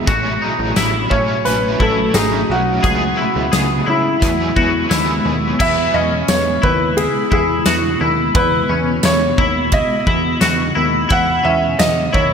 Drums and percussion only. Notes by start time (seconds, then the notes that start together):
0.07 kick, closed hi-hat
0.76 snare, closed hi-hat, tambourine
1.11 kick
1.45 closed hi-hat
1.80 kick
2.14 snare, closed hi-hat, tambourine
2.84 kick, closed hi-hat
3.52 snare, closed hi-hat, tambourine
4.22 kick, closed hi-hat
4.56 kick
4.91 snare, closed hi-hat, tambourine
5.60 kick, crash
6.28 snare, ride, tambourine
6.63 kick
6.97 ride
7.32 kick
7.66 snare, ride, tambourine
8.35 kick, ride
9.03 snare, ride, tambourine
9.38 kick
9.72 kick, ride
10.07 kick
10.41 snare, ride, tambourine
11.10 kick, ride
11.79 snare, ride, tambourine
12.14 kick